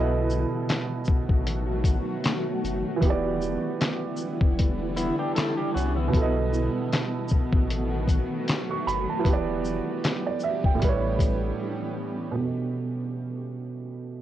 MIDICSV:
0, 0, Header, 1, 6, 480
1, 0, Start_track
1, 0, Tempo, 779221
1, 1857, Time_signature, 4, 2, 24, 8
1, 8758, End_track
2, 0, Start_track
2, 0, Title_t, "Upright piano"
2, 0, Program_c, 0, 0
2, 0, Note_on_c, 0, 47, 76
2, 0, Note_on_c, 0, 59, 65
2, 0, Note_on_c, 0, 69, 64
2, 0, Note_on_c, 0, 75, 76
2, 44, Control_c, 0, 64, 127
2, 1814, Note_off_c, 0, 47, 0
2, 1825, Note_on_c, 0, 52, 73
2, 1829, Note_off_c, 0, 59, 0
2, 1843, Note_off_c, 0, 69, 0
2, 1852, Note_on_c, 0, 59, 68
2, 1857, Note_off_c, 0, 75, 0
2, 1865, Control_c, 0, 64, 0
2, 1880, Note_on_c, 0, 67, 66
2, 1909, Note_on_c, 0, 74, 82
2, 1979, Control_c, 0, 64, 127
2, 3736, Note_off_c, 0, 52, 0
2, 3745, Note_on_c, 0, 47, 75
2, 3750, Note_off_c, 0, 59, 0
2, 3764, Note_off_c, 0, 67, 0
2, 3773, Note_on_c, 0, 59, 63
2, 3778, Note_off_c, 0, 74, 0
2, 3786, Control_c, 0, 64, 0
2, 3801, Note_on_c, 0, 69, 71
2, 3830, Note_on_c, 0, 75, 81
2, 3884, Control_c, 0, 64, 127
2, 5363, Note_on_c, 0, 85, 65
2, 5457, Note_off_c, 0, 85, 0
2, 5465, Note_on_c, 0, 83, 68
2, 5592, Note_off_c, 0, 83, 0
2, 5603, Note_on_c, 0, 81, 62
2, 5656, Note_off_c, 0, 47, 0
2, 5664, Note_on_c, 0, 52, 69
2, 5670, Note_off_c, 0, 59, 0
2, 5685, Note_off_c, 0, 69, 0
2, 5693, Note_on_c, 0, 59, 70
2, 5699, Note_off_c, 0, 75, 0
2, 5706, Control_c, 0, 64, 0
2, 5720, Note_on_c, 0, 67, 66
2, 5749, Note_on_c, 0, 74, 78
2, 5807, Control_c, 0, 64, 127
2, 5827, Note_off_c, 0, 81, 0
2, 5959, Note_off_c, 0, 74, 0
2, 6323, Note_on_c, 0, 74, 65
2, 6416, Note_off_c, 0, 74, 0
2, 6428, Note_on_c, 0, 76, 71
2, 6553, Note_off_c, 0, 76, 0
2, 6562, Note_on_c, 0, 79, 65
2, 6621, Note_off_c, 0, 52, 0
2, 6621, Note_on_c, 0, 45, 76
2, 6636, Note_off_c, 0, 59, 0
2, 6650, Note_off_c, 0, 67, 0
2, 6651, Note_on_c, 0, 55, 66
2, 6664, Control_c, 0, 64, 0
2, 6678, Note_on_c, 0, 71, 64
2, 6707, Note_on_c, 0, 73, 82
2, 6770, Control_c, 0, 64, 127
2, 6786, Note_off_c, 0, 79, 0
2, 7580, Note_off_c, 0, 45, 0
2, 7584, Note_on_c, 0, 47, 64
2, 7595, Note_off_c, 0, 55, 0
2, 7609, Note_off_c, 0, 71, 0
2, 7610, Note_on_c, 0, 59, 58
2, 7623, Note_off_c, 0, 73, 0
2, 7625, Control_c, 0, 64, 0
2, 7639, Note_on_c, 0, 69, 58
2, 7668, Note_on_c, 0, 75, 70
2, 7745, Control_c, 0, 64, 127
2, 8758, Note_off_c, 0, 47, 0
2, 8758, Note_off_c, 0, 59, 0
2, 8758, Note_off_c, 0, 69, 0
2, 8758, Note_off_c, 0, 75, 0
2, 8758, End_track
3, 0, Start_track
3, 0, Title_t, "Clean electric guitar"
3, 0, Program_c, 1, 27
3, 0, Note_on_c, 1, 59, 60
3, 63, Note_off_c, 1, 59, 0
3, 3059, Note_on_c, 1, 64, 79
3, 3063, Note_on_c, 1, 59, 66
3, 3188, Note_off_c, 1, 64, 0
3, 3190, Note_off_c, 1, 59, 0
3, 3197, Note_on_c, 1, 67, 74
3, 3198, Note_on_c, 1, 62, 61
3, 3293, Note_off_c, 1, 67, 0
3, 3294, Note_off_c, 1, 62, 0
3, 3298, Note_on_c, 1, 69, 88
3, 3302, Note_on_c, 1, 64, 73
3, 3428, Note_off_c, 1, 69, 0
3, 3430, Note_off_c, 1, 64, 0
3, 3432, Note_on_c, 1, 67, 86
3, 3437, Note_on_c, 1, 62, 68
3, 3531, Note_off_c, 1, 67, 0
3, 3533, Note_off_c, 1, 62, 0
3, 3537, Note_on_c, 1, 66, 74
3, 3541, Note_on_c, 1, 61, 68
3, 3667, Note_off_c, 1, 66, 0
3, 3669, Note_off_c, 1, 61, 0
3, 3672, Note_on_c, 1, 64, 69
3, 3676, Note_on_c, 1, 59, 60
3, 3901, Note_off_c, 1, 64, 0
3, 3903, Note_off_c, 1, 59, 0
3, 8758, End_track
4, 0, Start_track
4, 0, Title_t, "Ambient pad"
4, 0, Program_c, 2, 92
4, 0, Note_on_c, 2, 51, 84
4, 0, Note_on_c, 2, 54, 79
4, 0, Note_on_c, 2, 57, 77
4, 0, Note_on_c, 2, 59, 76
4, 0, Note_on_c, 2, 66, 89
4, 1833, Note_off_c, 2, 59, 0
4, 1837, Note_off_c, 2, 51, 0
4, 1837, Note_off_c, 2, 54, 0
4, 1837, Note_off_c, 2, 57, 0
4, 1837, Note_off_c, 2, 66, 0
4, 1853, Note_on_c, 2, 50, 81
4, 1853, Note_on_c, 2, 52, 75
4, 1853, Note_on_c, 2, 59, 77
4, 1854, Note_on_c, 2, 55, 75
4, 1855, Note_on_c, 2, 64, 93
4, 3756, Note_off_c, 2, 50, 0
4, 3756, Note_off_c, 2, 52, 0
4, 3756, Note_off_c, 2, 55, 0
4, 3757, Note_off_c, 2, 64, 0
4, 3775, Note_on_c, 2, 51, 79
4, 3775, Note_on_c, 2, 54, 78
4, 3775, Note_on_c, 2, 57, 74
4, 3777, Note_on_c, 2, 66, 89
4, 5671, Note_off_c, 2, 59, 0
4, 5677, Note_off_c, 2, 51, 0
4, 5677, Note_off_c, 2, 54, 0
4, 5677, Note_off_c, 2, 57, 0
4, 5678, Note_off_c, 2, 66, 0
4, 5695, Note_on_c, 2, 67, 85
4, 5697, Note_on_c, 2, 55, 78
4, 5697, Note_on_c, 2, 59, 77
4, 5697, Note_on_c, 2, 62, 76
4, 5698, Note_on_c, 2, 52, 80
4, 6647, Note_off_c, 2, 55, 0
4, 6647, Note_off_c, 2, 62, 0
4, 6658, Note_on_c, 2, 57, 75
4, 6661, Note_on_c, 2, 61, 72
4, 7597, Note_off_c, 2, 67, 0
4, 7598, Note_off_c, 2, 52, 0
4, 7598, Note_off_c, 2, 59, 0
4, 7608, Note_off_c, 2, 57, 0
4, 7610, Note_off_c, 2, 61, 0
4, 8758, End_track
5, 0, Start_track
5, 0, Title_t, "Sub bass"
5, 0, Program_c, 3, 38
5, 0, Note_on_c, 3, 35, 107
5, 279, Note_off_c, 3, 35, 0
5, 800, Note_on_c, 3, 33, 83
5, 1229, Note_off_c, 3, 33, 0
5, 1626, Note_on_c, 3, 30, 91
5, 1745, Note_off_c, 3, 30, 0
5, 1862, Note_on_c, 3, 28, 101
5, 2199, Note_off_c, 3, 28, 0
5, 2720, Note_on_c, 3, 28, 91
5, 3149, Note_off_c, 3, 28, 0
5, 3544, Note_on_c, 3, 36, 92
5, 3757, Note_off_c, 3, 36, 0
5, 3783, Note_on_c, 3, 35, 102
5, 4119, Note_off_c, 3, 35, 0
5, 4640, Note_on_c, 3, 33, 94
5, 5069, Note_off_c, 3, 33, 0
5, 5464, Note_on_c, 3, 30, 94
5, 5584, Note_off_c, 3, 30, 0
5, 5701, Note_on_c, 3, 28, 101
5, 6039, Note_off_c, 3, 28, 0
5, 6559, Note_on_c, 3, 28, 86
5, 6649, Note_off_c, 3, 28, 0
5, 6672, Note_on_c, 3, 33, 96
5, 7097, Note_off_c, 3, 33, 0
5, 8758, End_track
6, 0, Start_track
6, 0, Title_t, "Drums"
6, 184, Note_on_c, 9, 82, 47
6, 246, Note_off_c, 9, 82, 0
6, 426, Note_on_c, 9, 42, 63
6, 430, Note_on_c, 9, 38, 101
6, 434, Note_on_c, 9, 39, 85
6, 487, Note_off_c, 9, 42, 0
6, 492, Note_off_c, 9, 38, 0
6, 495, Note_off_c, 9, 39, 0
6, 646, Note_on_c, 9, 82, 54
6, 665, Note_on_c, 9, 36, 100
6, 707, Note_off_c, 9, 82, 0
6, 727, Note_off_c, 9, 36, 0
6, 796, Note_on_c, 9, 36, 97
6, 857, Note_off_c, 9, 36, 0
6, 904, Note_on_c, 9, 42, 80
6, 965, Note_off_c, 9, 42, 0
6, 1134, Note_on_c, 9, 36, 84
6, 1139, Note_on_c, 9, 42, 58
6, 1139, Note_on_c, 9, 82, 53
6, 1195, Note_off_c, 9, 36, 0
6, 1200, Note_off_c, 9, 42, 0
6, 1200, Note_off_c, 9, 82, 0
6, 1380, Note_on_c, 9, 42, 71
6, 1390, Note_on_c, 9, 38, 113
6, 1393, Note_on_c, 9, 39, 94
6, 1442, Note_off_c, 9, 42, 0
6, 1451, Note_off_c, 9, 38, 0
6, 1455, Note_off_c, 9, 39, 0
6, 1631, Note_on_c, 9, 42, 49
6, 1631, Note_on_c, 9, 82, 45
6, 1693, Note_off_c, 9, 42, 0
6, 1693, Note_off_c, 9, 82, 0
6, 1858, Note_on_c, 9, 36, 111
6, 1863, Note_on_c, 9, 42, 71
6, 1920, Note_off_c, 9, 36, 0
6, 1925, Note_off_c, 9, 42, 0
6, 2104, Note_on_c, 9, 82, 51
6, 2165, Note_off_c, 9, 82, 0
6, 2346, Note_on_c, 9, 42, 64
6, 2350, Note_on_c, 9, 38, 102
6, 2354, Note_on_c, 9, 39, 83
6, 2407, Note_off_c, 9, 42, 0
6, 2412, Note_off_c, 9, 38, 0
6, 2415, Note_off_c, 9, 39, 0
6, 2567, Note_on_c, 9, 82, 58
6, 2628, Note_off_c, 9, 82, 0
6, 2716, Note_on_c, 9, 36, 104
6, 2778, Note_off_c, 9, 36, 0
6, 2826, Note_on_c, 9, 42, 84
6, 2830, Note_on_c, 9, 36, 85
6, 2888, Note_off_c, 9, 42, 0
6, 2891, Note_off_c, 9, 36, 0
6, 3061, Note_on_c, 9, 42, 59
6, 3061, Note_on_c, 9, 82, 54
6, 3123, Note_off_c, 9, 42, 0
6, 3123, Note_off_c, 9, 82, 0
6, 3302, Note_on_c, 9, 42, 76
6, 3312, Note_on_c, 9, 38, 112
6, 3316, Note_on_c, 9, 39, 96
6, 3364, Note_off_c, 9, 42, 0
6, 3374, Note_off_c, 9, 38, 0
6, 3377, Note_off_c, 9, 39, 0
6, 3554, Note_on_c, 9, 42, 47
6, 3554, Note_on_c, 9, 82, 47
6, 3615, Note_off_c, 9, 42, 0
6, 3615, Note_off_c, 9, 82, 0
6, 3779, Note_on_c, 9, 36, 114
6, 3785, Note_on_c, 9, 42, 67
6, 3841, Note_off_c, 9, 36, 0
6, 3846, Note_off_c, 9, 42, 0
6, 4024, Note_on_c, 9, 82, 48
6, 4086, Note_off_c, 9, 82, 0
6, 4266, Note_on_c, 9, 42, 62
6, 4270, Note_on_c, 9, 38, 99
6, 4274, Note_on_c, 9, 39, 77
6, 4327, Note_off_c, 9, 42, 0
6, 4332, Note_off_c, 9, 38, 0
6, 4336, Note_off_c, 9, 39, 0
6, 4487, Note_on_c, 9, 82, 55
6, 4505, Note_on_c, 9, 36, 97
6, 4548, Note_off_c, 9, 82, 0
6, 4567, Note_off_c, 9, 36, 0
6, 4636, Note_on_c, 9, 36, 106
6, 4697, Note_off_c, 9, 36, 0
6, 4745, Note_on_c, 9, 42, 87
6, 4807, Note_off_c, 9, 42, 0
6, 4974, Note_on_c, 9, 36, 87
6, 4981, Note_on_c, 9, 42, 56
6, 4981, Note_on_c, 9, 82, 56
6, 5036, Note_off_c, 9, 36, 0
6, 5043, Note_off_c, 9, 42, 0
6, 5043, Note_off_c, 9, 82, 0
6, 5223, Note_on_c, 9, 42, 75
6, 5232, Note_on_c, 9, 38, 118
6, 5236, Note_on_c, 9, 39, 88
6, 5284, Note_off_c, 9, 42, 0
6, 5294, Note_off_c, 9, 38, 0
6, 5297, Note_off_c, 9, 39, 0
6, 5472, Note_on_c, 9, 42, 45
6, 5472, Note_on_c, 9, 82, 44
6, 5534, Note_off_c, 9, 42, 0
6, 5534, Note_off_c, 9, 82, 0
6, 5698, Note_on_c, 9, 36, 111
6, 5704, Note_on_c, 9, 42, 73
6, 5760, Note_off_c, 9, 36, 0
6, 5766, Note_off_c, 9, 42, 0
6, 5943, Note_on_c, 9, 82, 51
6, 6005, Note_off_c, 9, 82, 0
6, 6185, Note_on_c, 9, 42, 64
6, 6189, Note_on_c, 9, 38, 101
6, 6193, Note_on_c, 9, 39, 83
6, 6246, Note_off_c, 9, 42, 0
6, 6251, Note_off_c, 9, 38, 0
6, 6254, Note_off_c, 9, 39, 0
6, 6405, Note_on_c, 9, 82, 56
6, 6467, Note_off_c, 9, 82, 0
6, 6555, Note_on_c, 9, 36, 100
6, 6617, Note_off_c, 9, 36, 0
6, 6664, Note_on_c, 9, 42, 81
6, 6668, Note_on_c, 9, 36, 80
6, 6726, Note_off_c, 9, 42, 0
6, 6730, Note_off_c, 9, 36, 0
6, 6893, Note_on_c, 9, 36, 79
6, 6900, Note_on_c, 9, 42, 53
6, 6900, Note_on_c, 9, 82, 58
6, 6954, Note_off_c, 9, 36, 0
6, 6962, Note_off_c, 9, 42, 0
6, 6962, Note_off_c, 9, 82, 0
6, 8758, End_track
0, 0, End_of_file